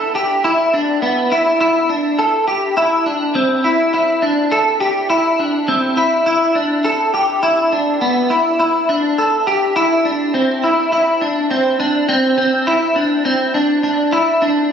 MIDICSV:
0, 0, Header, 1, 2, 480
1, 0, Start_track
1, 0, Key_signature, 0, "minor"
1, 0, Tempo, 582524
1, 1802, Time_signature, 4, 2, 24, 8
1, 12131, End_track
2, 0, Start_track
2, 0, Title_t, "Clean electric guitar"
2, 0, Program_c, 0, 27
2, 0, Note_on_c, 0, 69, 80
2, 120, Note_off_c, 0, 69, 0
2, 124, Note_on_c, 0, 67, 72
2, 362, Note_off_c, 0, 67, 0
2, 365, Note_on_c, 0, 64, 86
2, 604, Note_off_c, 0, 64, 0
2, 605, Note_on_c, 0, 62, 73
2, 838, Note_off_c, 0, 62, 0
2, 841, Note_on_c, 0, 59, 78
2, 1082, Note_off_c, 0, 59, 0
2, 1085, Note_on_c, 0, 64, 70
2, 1313, Note_off_c, 0, 64, 0
2, 1323, Note_on_c, 0, 64, 79
2, 1560, Note_on_c, 0, 62, 69
2, 1563, Note_off_c, 0, 64, 0
2, 1801, Note_off_c, 0, 62, 0
2, 1801, Note_on_c, 0, 69, 85
2, 2037, Note_off_c, 0, 69, 0
2, 2040, Note_on_c, 0, 67, 73
2, 2278, Note_off_c, 0, 67, 0
2, 2282, Note_on_c, 0, 64, 92
2, 2521, Note_on_c, 0, 62, 65
2, 2522, Note_off_c, 0, 64, 0
2, 2762, Note_off_c, 0, 62, 0
2, 2762, Note_on_c, 0, 60, 81
2, 3001, Note_on_c, 0, 64, 70
2, 3002, Note_off_c, 0, 60, 0
2, 3234, Note_off_c, 0, 64, 0
2, 3244, Note_on_c, 0, 64, 73
2, 3480, Note_on_c, 0, 62, 76
2, 3483, Note_off_c, 0, 64, 0
2, 3721, Note_off_c, 0, 62, 0
2, 3721, Note_on_c, 0, 69, 74
2, 3956, Note_off_c, 0, 69, 0
2, 3959, Note_on_c, 0, 67, 77
2, 4196, Note_off_c, 0, 67, 0
2, 4199, Note_on_c, 0, 64, 82
2, 4441, Note_off_c, 0, 64, 0
2, 4444, Note_on_c, 0, 62, 69
2, 4682, Note_on_c, 0, 60, 77
2, 4683, Note_off_c, 0, 62, 0
2, 4921, Note_on_c, 0, 64, 74
2, 4922, Note_off_c, 0, 60, 0
2, 5150, Note_off_c, 0, 64, 0
2, 5160, Note_on_c, 0, 64, 85
2, 5399, Note_on_c, 0, 62, 70
2, 5401, Note_off_c, 0, 64, 0
2, 5640, Note_off_c, 0, 62, 0
2, 5640, Note_on_c, 0, 69, 72
2, 5879, Note_off_c, 0, 69, 0
2, 5882, Note_on_c, 0, 67, 73
2, 6117, Note_off_c, 0, 67, 0
2, 6121, Note_on_c, 0, 64, 84
2, 6361, Note_off_c, 0, 64, 0
2, 6364, Note_on_c, 0, 62, 71
2, 6599, Note_off_c, 0, 62, 0
2, 6602, Note_on_c, 0, 59, 82
2, 6840, Note_on_c, 0, 64, 67
2, 6842, Note_off_c, 0, 59, 0
2, 7072, Note_off_c, 0, 64, 0
2, 7082, Note_on_c, 0, 64, 75
2, 7322, Note_off_c, 0, 64, 0
2, 7325, Note_on_c, 0, 62, 76
2, 7564, Note_off_c, 0, 62, 0
2, 7567, Note_on_c, 0, 69, 77
2, 7801, Note_off_c, 0, 69, 0
2, 7804, Note_on_c, 0, 67, 76
2, 8039, Note_off_c, 0, 67, 0
2, 8042, Note_on_c, 0, 64, 88
2, 8281, Note_on_c, 0, 62, 71
2, 8282, Note_off_c, 0, 64, 0
2, 8517, Note_off_c, 0, 62, 0
2, 8521, Note_on_c, 0, 60, 80
2, 8761, Note_off_c, 0, 60, 0
2, 8764, Note_on_c, 0, 64, 67
2, 8991, Note_off_c, 0, 64, 0
2, 9001, Note_on_c, 0, 64, 70
2, 9240, Note_on_c, 0, 62, 70
2, 9241, Note_off_c, 0, 64, 0
2, 9477, Note_off_c, 0, 62, 0
2, 9481, Note_on_c, 0, 60, 81
2, 9717, Note_off_c, 0, 60, 0
2, 9721, Note_on_c, 0, 62, 85
2, 9956, Note_off_c, 0, 62, 0
2, 9959, Note_on_c, 0, 60, 88
2, 10189, Note_off_c, 0, 60, 0
2, 10199, Note_on_c, 0, 60, 76
2, 10441, Note_off_c, 0, 60, 0
2, 10441, Note_on_c, 0, 64, 89
2, 10678, Note_on_c, 0, 62, 74
2, 10682, Note_off_c, 0, 64, 0
2, 10915, Note_off_c, 0, 62, 0
2, 10918, Note_on_c, 0, 60, 81
2, 11156, Note_off_c, 0, 60, 0
2, 11159, Note_on_c, 0, 62, 81
2, 11388, Note_off_c, 0, 62, 0
2, 11398, Note_on_c, 0, 62, 82
2, 11639, Note_on_c, 0, 64, 82
2, 11640, Note_off_c, 0, 62, 0
2, 11881, Note_off_c, 0, 64, 0
2, 11881, Note_on_c, 0, 62, 95
2, 12113, Note_off_c, 0, 62, 0
2, 12131, End_track
0, 0, End_of_file